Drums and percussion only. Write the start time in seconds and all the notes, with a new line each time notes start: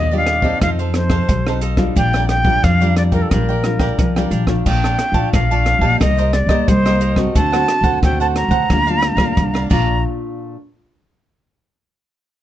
0.26 cross-stick, closed hi-hat
0.42 kick
0.61 kick, cross-stick, closed hi-hat
0.79 closed hi-hat
0.94 cross-stick, closed hi-hat
1.10 kick, cross-stick
1.29 kick, closed hi-hat
1.47 cross-stick
1.61 closed hi-hat
1.77 kick, cross-stick, closed hi-hat
1.97 kick, closed hi-hat
2.14 cross-stick, closed hi-hat
2.29 cross-stick, closed hi-hat
2.45 kick
2.64 kick, cross-stick, closed hi-hat
2.82 closed hi-hat
2.97 cross-stick, closed hi-hat
3.12 kick, closed hi-hat
3.31 kick, cross-stick, closed hi-hat
3.64 cross-stick, closed hi-hat
3.79 kick, cross-stick, closed hi-hat
3.99 kick, closed hi-hat
4.16 cross-stick, closed hi-hat
4.31 closed hi-hat
4.47 kick, cross-stick, closed hi-hat
4.66 kick, crash
4.84 cross-stick
4.99 cross-stick, closed hi-hat
5.14 kick, closed hi-hat
5.33 kick, cross-stick, closed hi-hat
5.52 closed hi-hat
5.66 cross-stick, closed hi-hat
5.82 kick
6.01 kick, cross-stick, closed hi-hat
6.19 closed hi-hat
6.33 cross-stick, closed hi-hat
6.49 kick, cross-stick
6.68 kick, closed hi-hat
6.86 cross-stick, closed hi-hat
7.01 closed hi-hat
7.16 kick, cross-stick
7.36 kick, closed hi-hat
7.53 cross-stick, closed hi-hat
7.68 cross-stick, closed hi-hat
7.84 kick, closed hi-hat
8.03 kick, cross-stick, closed hi-hat
8.21 closed hi-hat
8.36 cross-stick, closed hi-hat
8.51 kick, closed hi-hat
8.70 kick, cross-stick, closed hi-hat
8.88 closed hi-hat
9.02 cross-stick, closed hi-hat
9.18 kick, cross-stick
9.37 kick, closed hi-hat
9.55 cross-stick
9.71 kick, crash